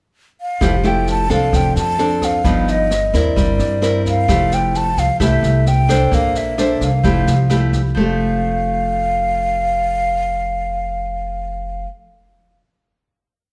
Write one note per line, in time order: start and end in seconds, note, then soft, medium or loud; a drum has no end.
0.41 0.89 F5 medium
0.61 1.26 F1 medium
0.61 1.51 F3 soft
0.61 0.74 A3 soft
0.61 0.75 E4 medium
0.61 0.75 G4 medium
0.61 kick medium
0.61 cross-stick medium
0.61 snare soft
0.83 1.26 A3 medium
0.83 1.26 E4 medium
0.83 1.26 G4 medium
0.83 1.09 G5 medium
0.83 snare soft
1.07 1.30 A5 medium
1.07 snare soft
1.29 1.54 C2 medium
1.29 1.95 C4 medium
1.29 1.95 D4 medium
1.29 1.95 A4 medium
1.29 1.57 F5 medium
1.29 kick soft
1.29 snare soft
1.52 1.74 F1 medium
1.52 2.42 F3 soft
1.52 1.77 G5 medium
1.52 kick medium
1.52 cross-stick medium
1.52 snare soft
1.76 2.41 F2 medium
1.76 2.26 A5 medium
1.76 snare soft
1.98 2.41 C4 soft
1.98 2.41 D4 medium
1.98 2.41 A4 medium
1.98 snare soft
2.22 2.72 F5 medium
2.22 kick soft
2.22 cross-stick medium
2.22 snare soft
2.44 3.09 G1 medium
2.44 3.34 G2 soft
2.44 2.90 F3 medium
2.44 2.91 B3 medium
2.44 2.91 D#4 medium
2.44 kick medium
2.44 snare soft
2.68 3.18 D#5 medium
2.68 snare soft
2.91 cross-stick medium
2.91 snare soft
3.14 3.38 D#2 medium
3.14 3.79 C4 medium
3.14 3.79 E4 medium
3.14 3.79 A#4 medium
3.14 4.07 D5 medium
3.14 kick soft
3.14 snare soft
3.36 3.58 G1 medium
3.36 4.26 G3 medium
3.36 kick medium
3.36 snare soft
3.59 4.24 G2 medium
3.59 snare soft
3.82 4.26 C4 soft
3.82 4.26 E4 medium
3.82 4.27 A#4 medium
3.82 cross-stick soft
3.82 snare soft
4.05 4.55 F5 medium
4.05 kick soft
4.05 snare soft
4.28 4.93 F1 medium
4.28 5.18 F3 soft
4.28 4.90 A3 soft
4.28 4.90 E4 soft
4.28 4.91 G4 medium
4.28 kick medium
4.28 cross-stick medium
4.28 snare soft
4.52 4.78 G5 medium
4.52 snare soft
4.74 5.01 A5 medium
4.74 snare soft
4.97 5.08 C2 medium
4.97 5.21 F5 medium
4.97 kick soft
4.97 snare soft
5.20 5.42 C2 medium
5.20 6.10 C3 soft
5.20 5.66 A3 medium
5.20 5.66 E4 soft
5.20 5.66 G4 medium
5.20 5.69 E5 medium
5.20 kick medium
5.20 cross-stick medium
5.20 snare soft
5.43 6.08 C2 medium
5.43 snare soft
5.66 6.16 G5 medium
5.66 snare soft
5.89 6.54 D4 medium
5.89 6.54 A4 medium
5.89 6.55 C5 medium
5.89 kick soft
5.89 cross-stick medium
5.89 snare soft
6.11 6.77 A#1 medium
6.11 7.02 A#3 soft
6.11 6.39 F5 medium
6.11 kick medium
6.11 snare soft
6.35 6.85 E5 medium
6.35 snare soft
6.58 6.89 D4 soft
6.58 6.89 A4 medium
6.58 6.89 C5 medium
6.58 cross-stick medium
6.58 snare soft
6.81 7.06 C2 medium
6.81 7.75 F5 medium
6.81 kick soft
6.81 snare soft
7.03 7.26 F1 medium
7.03 7.94 F3 medium
7.03 7.34 A3 medium
7.03 7.34 E4 medium
7.03 7.34 G4 medium
7.03 kick medium
7.03 snare soft
7.27 7.92 C2 medium
7.27 snare soft
7.50 7.80 A3 soft
7.50 7.80 E4 soft
7.50 7.80 G4 medium
7.50 cross-stick medium
7.50 snare soft
7.73 kick soft
7.73 snare soft
7.95 11.84 F1 medium
7.95 11.86 F3 medium
7.95 11.88 A3 medium
8.00 11.92 G4 medium
8.00 11.87 F5 medium